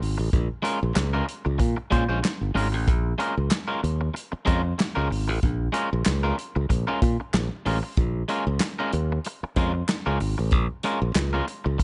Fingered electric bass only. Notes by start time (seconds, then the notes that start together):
0.02 G#1
0.19 A1
0.33 A#1
0.83 A#1
0.96 C#2
1.46 C#2
1.60 A#2
1.92 A#2
2.09 A#1
2.41 G1
2.55 G#1
2.74 A1
2.88 A#1
3.37 C#2
3.84 D#2
4.33 muted fingered electric bass stroke
4.48 F2
4.97 C#2
5.10 G#1
5.29 A1
5.43 A#1
5.93 A#1
6.07 C#2
6.56 C#2
6.70 A#1
7.02 A#2
7.34 A#1
7.66 A1
7.97 A#1
8.47 C#2
8.93 D#2
9.43 muted fingered electric bass stroke
9.56 F2
10.07 C#2
10.20 G#1
10.39 A1
10.52 A#1
11.02 A#1
11.15 C#2
11.66 C#2